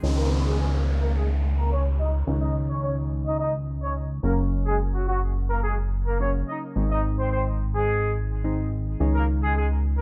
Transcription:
0.03 C#2 D#3 G#3 C#4 D#4, downlifter
0.17 A#3 A#4
0.45 G#3 G#4
0.59 G#3 G#4
1.02 A#3 A#4
1.16 G#3 G#4
1.58 A#3 A#4
1.72 C#4 C#5
2.00 D#4 D#5
2.27 C#2 D#3 G#3 C#4 D#4
2.42 D#4 D#5
2.70 C#4 C#5
2.84 C#4 C#5
3.26 D#4 D#5
3.40 D#4 D#5
3.82 C#4 C#5
4.23 F#1 C#3 F#3 A#3 C#4 A#4
4.66 G#3 G#4
4.94 F#3 F#4
5.08 F#3 F#4
5.50 A#3 A#4
5.64 G#3 G#4
6.06 A#3 A#4
6.20 C#3 F#3 A#3 C#4 C#5
6.48 D#4 D#5
6.76 G#1 D#3 G#3 C4 D#4
6.90 D#4 D#5
7.18 C4 C5
7.32 C4 C5
7.74 G#3 G#4
8.44 D#3 G#3 C4 D#4
9.00 C#2 D#3 G#3 C#4 D#4
9.14 A#3 A#4
9.42 G#3 G#4
9.56 G#3 G#4
9.98 A#4

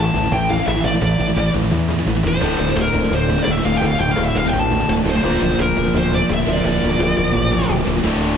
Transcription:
Already playing: A1 A2 E3 A5
0.14 A1 A2 E3, cajon bass
0.23 A2 E3
0.32 A1 A2 E3 G5, cajon bass
0.49 A2 E3 F5, cajon bass
0.59 A2 E3
0.66 A1 A2 E3 E5, cajon slap
0.76 A2 E3
0.84 A1 A2 E3 D5
0.94 A2 E3
1.01 A1 A2 E3, cajon bass
1.18 A1 A2 E3
1.28 A2 E3
1.36 A1 A2 E3, cajon slap
1.53 A1 A2 E3, cajon bass
1.62 A2 E3
1.71 E2 A2 E3, cajon bass
1.88 A2 E3, cajon bass
1.99 A2 E3
2.06 A1 A2 E3, cajon slap
2.16 A2 E3
2.23 E1 A2 E3, cajon bass
2.28 C5
2.34 A2 E3
2.41 D1 D2 A2 D3, cajon bass
2.58 D1 D2 A2
2.68 D2 A2
2.75 D1 D2 A2, cajon slap
2.81 A#4
2.93 D1 D2 A2, cajon bass
3.03 D2 A2
3.10 D1 D2 A2, cajon bass
3.14 C5
3.28 D2 A2, cajon bass
3.38 D2 A2
3.43 D5, cajon slap
3.47 D1 D2 A2
3.51 E5
3.57 D2 A2 D3
3.65 D1 D2 A2 F5
3.74 D2 A2 G5
3.81 D1 D2 A2 D3, cajon bass
3.86 F5
3.99 D1 D2 A2 G5
4.09 D2 A2 F5
4.16 D1 D2 A2, cajon slap
4.25 E5
4.35 D1 D2 A2 F5, cajon bass
4.45 D2 A2
4.49 G5
4.53 A1 D2 A2, cajon bass
4.59 A5
4.70 D2 A2, cajon bass
4.80 D2 A2
4.88 D1 D2 A2, cajon slap
4.97 D2 A2
5.03 D1 D2 A2 D3
5.10 C5
5.14 D2 A2
5.23 D1 A#2 F3 A#3, cajon bass
5.41 D1 A#2 F3
5.50 A#2 F3
5.58 D1 A#2 F3 A#4, cajon slap
5.76 D1 A#2 F3, cajon bass
5.85 A#2 F3
5.93 D1 A#2 F3, cajon bass
5.98 C5
6.11 A#2 F3 D5, cajon bass
6.21 A#2 F3
6.29 D1 A#2 F3, cajon slap
6.34 E5
6.39 A#2 F3
6.46 D1 A#2 F3 A#3
6.53 F3 D5
6.57 A#2
6.64 D1 A#2 F3 A#3, cajon bass
6.81 D1 A#2 F3
6.90 A#2 F3
6.98 D1 A#2 F3, cajon slap
7.16 D1 A#2 F3, cajon bass
7.25 A#2 F3
7.33 A1 A#2 F3, cajon bass
7.51 A#2 F3, cajon bass
7.60 A#2 F3
7.68 D1 A#2 F3
7.77 A#2 F3
7.84 D1 A#2 F3 A#3
7.96 A#2 F3
8.03 D1 D2 A2 D3, cajon bass, cajon slap
8.21 cajon slap

